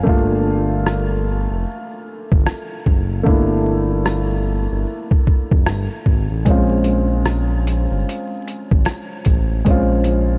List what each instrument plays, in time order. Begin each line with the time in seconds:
0.03 analog synth bass G1, upright piano A3 A#3, kick
0.07 upright piano D4 F4
0.86 cross-stick, tambourine
1.51 analog synth bass F1
2.32 analog synth bass G1, kick
2.47 cross-stick, tambourine
2.86 analog synth bass F#1, kick
3.23 analog synth bass G1, upright piano A3 A#3 D4, kick
3.28 upright piano E4
4.05 cross-stick, tambourine
4.71 analog synth bass G1
5.11 kick
5.27 kick
5.51 analog synth bass F1, kick
5.66 analog synth bass G1, cross-stick, tambourine
6.06 analog synth bass G#1, kick
6.31 analog synth bass A1
6.45 analog synth bass A#1, upright piano G#3 C4 C#4, kick, closed hi-hat
6.50 upright piano F4
6.84 closed hi-hat
7.25 cross-stick, closed hi-hat, tambourine
7.67 closed hi-hat
7.91 analog synth bass G1
8.09 closed hi-hat
8.47 closed hi-hat
8.71 analog synth bass G#1, kick
8.85 cross-stick, closed hi-hat, tambourine
9.25 analog synth bass A1, kick, closed hi-hat
9.65 analog synth bass A#1, upright piano G#3 C4 C#4, kick, closed hi-hat
9.70 upright piano F4
10.04 closed hi-hat